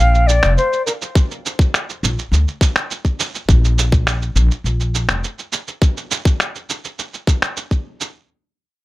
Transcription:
0.00 0.39 A#1 medium
0.00 0.29 F5 loud
0.00 cabasa soft
0.15 cabasa soft
0.27 0.57 D5 loud
0.27 cabasa medium
0.43 0.55 F1 medium
0.43 finger snap medium
0.43 cabasa soft
0.57 0.84 C5 medium
0.57 cabasa soft
0.73 cabasa soft
0.86 0.93 A#4 medium
0.86 cabasa medium
1.02 cabasa soft
1.15 kick loud
1.15 cabasa soft
1.31 cabasa soft
1.46 cabasa medium
1.59 kick loud
1.59 cabasa soft
1.74 finger snap medium
1.74 cabasa soft
1.90 cabasa soft
2.03 2.15 A#1 medium
2.03 cabasa medium
2.19 cabasa soft
2.32 2.44 D2 medium
2.32 cabasa soft
2.48 cabasa soft
2.61 kick medium
2.61 cabasa medium
2.76 finger snap medium
2.76 cabasa soft
2.91 cabasa soft
3.05 kick medium
3.05 cabasa soft
3.20 cabasa medium
3.35 cabasa soft
3.49 4.32 A#1 medium
3.49 kick loud
3.49 cabasa soft
3.65 cabasa soft
3.79 cabasa medium
3.92 kick loud
3.92 cabasa soft
4.07 finger snap medium
4.07 cabasa soft
4.22 cabasa soft
4.36 4.48 A#1 medium
4.36 cabasa medium
4.51 cabasa soft
4.64 5.05 A#1 medium
4.64 cabasa soft
4.80 cabasa soft
4.95 cabasa medium
5.08 5.21 F1 medium
5.08 finger snap medium
5.08 cabasa soft
5.24 cabasa soft
5.39 cabasa soft
5.53 cabasa medium
5.68 cabasa soft
5.82 kick loud
5.82 cabasa soft
5.97 cabasa soft
6.11 cabasa medium
6.25 kick loud
6.25 cabasa soft
6.40 finger snap medium
6.40 cabasa soft
6.55 cabasa soft
6.70 cabasa medium
6.85 cabasa soft
6.99 cabasa soft
7.14 cabasa soft
7.27 kick medium
7.27 cabasa medium
7.42 finger snap medium
7.42 cabasa soft
7.57 cabasa soft
7.71 kick medium
7.71 cabasa soft
8.01 cabasa medium

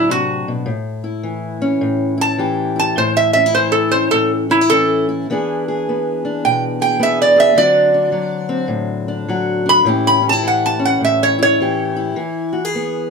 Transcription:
0.00 0.64 A2 medium
0.00 0.65 F#3 medium
0.00 0.66 C4 medium
0.00 0.66 D4 medium
0.00 0.11 E4 medium
0.00 0.69 F#4 medium
0.10 0.47 C3 medium
0.10 0.47 F#4 loud
0.48 0.69 B2 medium
0.66 1.81 A2 medium
1.04 2.17 E4 medium
1.23 2.38 E3 medium
1.62 2.95 C#4 medium
1.81 2.95 A2 medium
2.18 2.75 E4 medium
2.18 2.59 A5 loud
2.38 3.56 E3 medium
2.38 2.95 G4 medium
2.76 3.35 E4 medium
2.76 2.98 A5 loud
2.97 4.11 A2 medium
2.97 3.17 C5 medium
3.17 3.32 E5 medium
3.33 3.46 C#4 medium
3.33 3.54 E5 loud
3.46 4.49 E4 medium
3.55 4.70 E3 medium
3.55 3.74 C5 medium
3.72 3.92 A4 medium
3.91 4.48 C#4 medium
3.91 4.12 C5 medium
4.11 5.25 A2 medium
4.11 4.31 A4 medium
4.50 4.61 C#4 medium
4.50 4.70 E4 medium
4.61 5.07 E4 soft
4.70 5.29 E3 medium
4.70 5.27 C#4 medium
4.70 5.06 A4 loud
5.09 5.26 E4 medium
5.30 7.56 E3 medium
5.30 5.87 B3 medium
5.30 6.24 D4 medium
5.30 5.67 G#4 medium
5.68 6.80 G#4 medium
5.89 6.98 B3 medium
6.25 7.57 D4 medium
6.45 7.55 B2 medium
6.45 6.63 G5 medium
6.81 6.99 G#4 medium
6.81 7.00 G5 medium
6.99 7.55 B3 medium
6.99 7.35 G#4 medium
6.99 7.20 E5 loud
7.22 7.39 D5 medium
7.36 7.55 G#4 medium
7.36 7.58 E5 loud
7.55 9.84 D3 medium
7.55 8.11 F#3 medium
7.55 8.48 C4 medium
7.55 7.93 D4 medium
7.55 9.28 F#4 medium
7.55 8.70 D5 loud
7.94 9.07 D4 medium
8.12 9.27 F#3 medium
8.49 9.84 C4 medium
8.68 9.83 A2 medium
9.08 9.65 D4 medium
9.28 9.85 F#3 medium
9.28 9.88 F#4 medium
9.66 9.85 D4 medium
9.66 9.88 B5 loud
9.85 10.99 A2 medium
9.85 10.42 E3 medium
9.85 10.20 C#4 medium
9.85 10.21 E4 medium
9.85 11.60 G4 medium
10.07 10.26 B5 loud
10.22 10.32 C#4 medium
10.29 11.37 E4 medium
10.29 10.47 A5 loud
10.43 11.60 E3 medium
10.48 10.65 F#5 medium
10.66 10.84 A5 medium
10.79 12.15 C#4 medium
10.85 11.04 F#5 medium
11.01 12.15 A2 medium
11.01 11.23 E5 loud
11.23 11.41 C#5 loud
11.39 11.96 E4 medium
11.39 12.54 C#5 loud
11.60 12.16 E3 medium
11.60 12.17 G4 medium
11.96 12.56 E4 medium
12.16 13.10 E3 medium
12.53 12.65 F#4 medium
12.65 13.10 G#4 medium
12.75 13.10 B3 medium

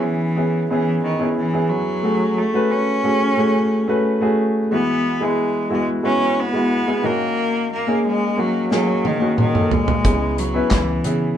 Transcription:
0.00 0.34 C#3 soft
0.00 0.37 B3 medium
0.00 0.37 C#4 medium
0.00 0.38 E4 medium
0.00 0.38 G#4 medium
0.05 0.70 E3 medium
0.37 0.62 B3 medium
0.37 0.62 C#4 medium
0.37 0.63 E4 medium
0.37 0.63 G#4 medium
0.70 1.02 E3 medium
0.70 1.08 B3 medium
0.70 1.08 C#4 medium
0.70 1.08 E4 medium
0.70 1.09 G#4 medium
1.03 1.35 D#3 medium
1.20 1.45 B3 medium
1.20 1.46 C#4 soft
1.20 1.46 E4 medium
1.20 1.46 G#4 medium
1.37 1.71 E3 medium
1.53 1.91 B3 medium
1.53 1.91 C#4 medium
1.53 1.91 E4 medium
1.53 1.92 G#4 medium
1.70 2.40 F#3 medium
2.03 2.41 A3 medium
2.03 2.41 C#4 medium
2.03 2.41 F#4 soft
2.03 2.42 G#4 medium
2.38 2.73 A3 medium
2.53 2.91 A3 medium
2.53 2.91 C#4 medium
2.53 2.92 F#4 medium
2.53 2.92 B4 medium
2.72 4.05 C#4 medium
3.03 3.29 A3 medium
3.03 3.29 C#4 medium
3.03 3.29 F#4 medium
3.03 3.30 G#4 medium
3.37 3.75 A3 medium
3.37 3.75 C#4 medium
3.37 3.75 F#4 medium
3.37 3.75 G#4 medium
3.87 4.12 A3 medium
3.87 4.13 C#4 medium
3.87 4.13 F#4 medium
3.87 4.13 B4 medium
4.21 4.58 A3 medium
4.21 4.58 C#4 medium
4.21 4.59 F#4 medium
4.21 4.59 G#4 medium
4.71 5.68 E3 soft
4.71 5.08 G#3 medium
4.71 5.08 B3 medium
4.71 5.25 B3 medium
4.71 5.09 E4 medium
4.71 5.09 F#4 medium
5.20 5.58 G#3 medium
5.20 5.73 G#3 medium
5.20 5.58 B3 medium
5.20 5.58 E4 medium
5.20 5.59 G#4 medium
5.70 5.95 G#3 medium
5.70 5.88 G#3 medium
5.70 5.96 B3 medium
5.70 5.96 E4 medium
5.70 5.96 F#4 medium
6.03 6.41 G#3 medium
6.03 6.41 B3 medium
6.03 6.41 C#4 medium
6.03 6.42 E4 medium
6.03 6.42 F#4 medium
6.40 7.07 B3 medium
6.53 6.79 G#3 medium
6.53 6.79 B3 medium
6.53 6.79 E4 medium
6.53 6.80 F#4 medium
6.87 7.04 G#3 medium
6.87 7.05 B3 medium
6.87 7.05 E4 medium
6.87 7.05 G#4 medium
7.03 8.00 D#3 medium
7.03 7.71 A#3 medium
7.03 7.72 A#3 medium
7.03 7.71 C#4 medium
7.03 7.71 D#4 medium
7.03 7.71 F#4 medium
7.73 8.03 A#3 medium
7.87 8.25 A#3 medium
7.87 8.25 C#4 medium
7.87 8.25 D#4 medium
7.87 8.25 G#4 medium
8.06 8.41 G#3 medium
8.37 8.72 F#3 medium
8.37 8.62 A#3 medium
8.37 8.63 C#4 medium
8.37 8.63 D#4 medium
8.37 8.63 F#4 medium
8.70 9.08 F#3 medium
8.70 9.08 A#3 medium
8.70 9.08 C#4 medium
8.70 9.09 D#4 medium
8.70 9.09 G#4 medium
8.70 snare soft
9.05 9.39 D#3 medium
9.05 high tom medium
9.20 9.45 A#3 medium
9.20 9.46 C#4 medium
9.20 9.46 D#4 medium
9.20 9.46 F#4 medium
9.38 9.75 D#3 medium
9.38 mid tom medium
9.53 9.91 A#3 medium
9.53 9.92 C#4 medium
9.53 9.92 D#4 medium
9.53 9.92 A4 medium
9.53 mid tom medium
9.71 10.41 G#3 medium
9.71 floor tom medium
9.88 floor tom medium
10.04 10.60 C#2 medium
10.04 11.01 C#3 medium
10.04 10.41 B3 medium
10.04 10.42 C#4 medium
10.04 10.42 E4 medium
10.04 10.42 G#4 medium
10.04 kick loud
10.04 closed hi-hat medium
10.38 10.73 F#3 medium
10.38 closed hi-hat medium
10.54 10.92 B3 medium
10.54 10.92 C#4 medium
10.54 10.92 E4 medium
10.54 10.92 B4 medium
10.71 10.99 C#2 medium
10.71 11.37 E3 medium
10.71 kick medium
10.71 snare medium
10.71 clap medium
10.71 closed hi-hat medium
11.04 11.32 C#3 medium
11.04 11.29 B3 medium
11.04 11.29 C#4 medium
11.04 11.30 E4 soft
11.04 11.30 G#4 medium
11.04 closed hi-hat medium

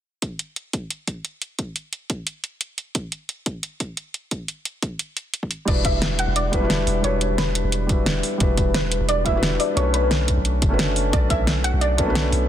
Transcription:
0.22 kick loud
0.22 closed hi-hat medium
0.39 closed hi-hat medium
0.56 closed hi-hat medium
0.73 kick loud
0.73 closed hi-hat medium
0.90 closed hi-hat medium
1.07 kick medium
1.07 closed hi-hat medium
1.25 closed hi-hat medium
1.42 closed hi-hat medium
1.59 kick loud
1.59 closed hi-hat medium
1.76 closed hi-hat medium
1.93 closed hi-hat medium
2.10 kick loud
2.10 closed hi-hat medium
2.27 closed hi-hat medium
2.44 closed hi-hat medium
2.61 closed hi-hat medium
2.78 closed hi-hat medium
2.95 kick loud
2.95 closed hi-hat medium
3.12 closed hi-hat medium
3.29 closed hi-hat medium
3.46 kick loud
3.46 closed hi-hat medium
3.63 closed hi-hat medium
3.80 kick medium
3.80 closed hi-hat medium
3.97 closed hi-hat medium
4.14 closed hi-hat medium
4.31 kick loud
4.31 closed hi-hat medium
4.48 closed hi-hat medium
4.65 closed hi-hat medium
4.82 kick loud
4.82 closed hi-hat medium
4.99 closed hi-hat medium
5.17 closed hi-hat medium
5.34 closed hi-hat medium
5.43 kick medium
5.51 closed hi-hat medium
5.65 6.27 E1 loud
5.65 6.50 G3 medium
5.65 6.50 D4 medium
5.65 6.51 E4 medium
5.65 6.52 F#4 medium
5.65 5.76 D5 loud
5.65 kick loud
5.65 closed hi-hat medium
5.65 crash loud
5.70 6.52 B4 medium
5.85 6.17 E5 loud
5.85 kick loud
5.85 closed hi-hat loud
6.02 snare loud
6.02 closed hi-hat medium
6.19 6.37 F#5 loud
6.19 closed hi-hat loud
6.28 6.86 E1 medium
6.36 7.06 D5 loud
6.36 closed hi-hat medium
6.52 6.58 G3 loud
6.52 6.59 D4 medium
6.52 6.59 E4 medium
6.52 6.59 F#4 medium
6.52 6.60 B4 loud
6.52 kick medium
6.52 closed hi-hat loud
6.60 7.00 G3 loud
6.60 7.01 D4 medium
6.60 7.02 E4 medium
6.60 7.03 F#4 medium
6.65 7.03 B4 loud
6.70 snare loud
6.70 closed hi-hat medium
6.87 7.03 E1 medium
6.87 open hi-hat medium
7.02 7.63 E1 loud
7.02 7.85 G3 medium
7.02 7.87 D4 medium
7.02 7.87 E4 medium
7.02 7.88 F#4 medium
7.02 7.39 C#5 loud
7.02 closed hi-hat medium
7.07 7.89 B4 loud
7.21 closed hi-hat loud
7.38 7.86 B4 medium
7.38 snare loud
7.38 closed hi-hat medium
7.55 closed hi-hat loud
7.64 8.22 E1 medium
7.72 closed hi-hat medium
7.87 8.36 G3 medium
7.87 8.38 D4 medium
7.87 8.39 E4 medium
7.87 8.39 F#4 medium
7.87 kick loud
7.87 closed hi-hat loud
7.92 8.40 B4 medium
8.06 snare loud
8.06 closed hi-hat medium
8.23 open hi-hat medium
8.38 8.99 E1 loud
8.38 9.22 G3 medium
8.38 9.23 D4 medium
8.38 9.24 E4 medium
8.38 9.24 F#4 medium
8.38 kick loud
8.38 closed hi-hat medium
8.43 9.25 B4 medium
8.57 kick loud
8.57 closed hi-hat medium
8.74 9.06 B4 medium
8.74 snare loud
8.74 closed hi-hat medium
8.92 closed hi-hat loud
9.01 9.59 E1 medium
9.09 9.24 D5 loud
9.09 closed hi-hat medium
9.24 9.31 G3 loud
9.24 9.31 D4 medium
9.24 9.32 E4 medium
9.24 9.32 F#4 medium
9.24 9.32 B4 loud
9.24 9.61 E5 loud
9.24 kick medium
9.24 closed hi-hat loud
9.32 9.74 G3 loud
9.32 9.74 D4 medium
9.32 9.75 E4 medium
9.32 9.75 F#4 medium
9.37 9.76 B4 loud
9.43 snare loud
9.43 closed hi-hat medium
9.59 9.77 D5 loud
9.59 open hi-hat medium
9.74 10.36 B1 loud
9.74 10.59 A3 medium
9.74 10.59 C#4 medium
9.74 10.60 D4 medium
9.74 10.61 F#4 medium
9.74 9.94 C#5 loud
9.74 closed hi-hat medium
9.79 10.61 B4 loud
9.94 10.25 B4 medium
9.94 closed hi-hat medium
10.11 snare loud
10.11 closed hi-hat medium
10.28 kick medium
10.28 closed hi-hat medium
10.37 10.61 B1 medium
10.45 closed hi-hat medium
10.62 11.12 F#1 medium
10.62 kick loud
10.62 closed hi-hat medium
10.69 11.09 A3 loud
10.69 11.11 C#4 medium
10.69 11.11 D4 medium
10.69 11.12 F#4 medium
10.74 11.13 B4 loud
10.79 snare loud
10.79 closed hi-hat medium
10.96 open hi-hat medium
11.11 11.72 B1 loud
11.11 11.95 A3 medium
11.11 11.96 C#4 medium
11.11 11.97 D4 medium
11.11 11.97 F#4 medium
11.11 11.31 D5 loud
11.11 kick loud
11.11 closed hi-hat medium
11.30 11.62 E5 loud
11.30 kick loud
11.30 closed hi-hat medium
11.47 snare loud
11.47 closed hi-hat medium
11.64 11.72 F#5 loud
11.64 closed hi-hat medium
11.74 12.31 B1 medium
11.81 12.48 D5 loud
11.81 closed hi-hat medium
11.97 12.04 A3 loud
11.97 12.04 C#4 medium
11.97 12.04 D4 medium
11.97 12.05 F#4 medium
11.97 12.05 B4 loud
11.97 kick medium
11.97 closed hi-hat medium
12.05 12.46 A3 loud
12.05 12.47 B3 medium
12.05 12.48 D4 medium
12.05 12.48 F#4 medium
12.10 12.48 B4 loud
12.15 snare loud
12.15 closed hi-hat medium
12.32 12.48 B1 medium
12.32 open hi-hat medium

